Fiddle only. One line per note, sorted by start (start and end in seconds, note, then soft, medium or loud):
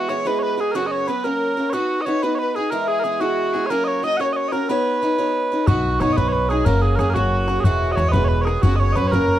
0.00 0.12 F#4 medium
0.10 0.28 C#5 medium
0.27 0.42 B4 medium
0.43 0.58 B4 medium
0.61 0.78 G#4 medium
0.77 0.95 F#4 medium
0.94 1.11 C#5 medium
1.10 1.29 B4 medium
1.27 1.75 A#4 medium
1.75 2.09 F#4 medium
2.08 2.24 C#5 medium
2.23 2.39 B4 medium
2.40 2.55 B4 medium
2.56 2.72 G#4 medium
2.71 2.88 A#4 medium
2.88 3.23 G#4 medium
3.22 3.55 F#4 medium
3.54 3.74 G#4 medium
3.72 4.04 A#4 medium
4.05 4.19 D#5 medium
4.21 4.26 C#5 medium
4.33 4.54 C#5 medium
4.33 4.38 D#5 medium
4.52 4.72 A#4 medium
4.70 5.36 B4 medium
5.68 5.99 F#4 medium
6.01 6.18 C#5 medium
6.16 6.49 B4 medium
6.50 6.68 G#4 medium
6.67 6.86 A#4 medium
6.85 6.99 G#4 medium
6.99 7.17 G#4 medium
7.15 7.64 F#4 medium
7.64 8.00 F#4 medium
7.99 8.16 C#5 medium
8.14 8.44 B4 medium
8.43 8.63 G#4 medium
8.43 8.48 A#4 medium
8.64 8.79 F#4 medium
8.81 8.99 C#5 medium
8.98 9.16 B4 medium
9.15 9.39 A#4 medium